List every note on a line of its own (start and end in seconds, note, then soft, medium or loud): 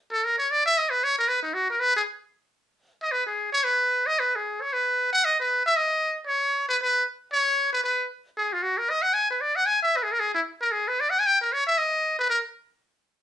0.12 0.26 A4 medium
0.24 0.38 A#4 medium
0.38 0.53 C#5 loud
0.51 0.65 D5 medium
0.66 0.80 E5 loud
0.78 0.92 D#5 medium
0.90 1.05 B4 medium
1.04 1.18 C#5 loud
1.19 1.30 A#4 medium
1.28 1.42 B4 medium
1.43 1.55 D#4 medium
1.54 1.69 F#4 medium
1.71 1.81 A#4 medium
1.80 1.95 B4 loud
1.96 2.02 G#4 medium
3.03 3.13 D#5 medium
3.12 3.26 B4 medium
3.27 3.51 G#4 medium
3.52 3.66 C#5 loud
3.64 4.08 B4 medium
4.07 4.21 D#5 loud
4.20 4.37 B4 medium
4.35 4.63 G#4 medium
4.61 4.75 C#5 loud
4.73 5.12 B4 medium
5.13 5.26 F#5 loud
5.25 5.38 D#5 medium
5.40 5.62 B4 medium
5.66 5.78 E5 loud
5.76 6.17 D#5 medium
6.27 6.65 C#5 medium
6.69 6.77 B4 loud
6.82 7.04 B4 medium
7.33 7.71 C#5 loud
7.73 7.82 B4 medium
7.84 8.07 B4 medium
8.37 8.55 G#4 medium
8.53 8.64 F4 medium
8.63 8.79 F#4 medium
8.78 8.91 A#4 medium
8.90 9.04 D#5 medium
9.02 9.15 F#5 medium
9.14 9.29 G#5 loud
9.31 9.43 B4 medium
9.41 9.57 D5 medium
9.56 9.68 F#5 loud
9.66 9.82 G#5 loud
9.83 9.98 E5 loud
9.96 10.04 B4 medium
10.03 10.14 G#4 medium
10.12 10.21 A#4 medium
10.20 10.34 G#4 medium
10.35 10.41 E4 medium
10.61 10.73 A#4 loud
10.72 10.90 G#4 medium
10.88 11.02 B4 loud
11.00 11.12 D5 medium
11.10 11.21 F#5 loud
11.19 11.28 G#5 loud
11.27 11.40 G5 loud
11.41 11.54 A#4 medium
11.53 11.66 C#5 loud
11.67 11.80 E5 loud
11.78 12.18 D#5 medium
12.19 12.28 B4 medium
12.30 12.39 A#4 medium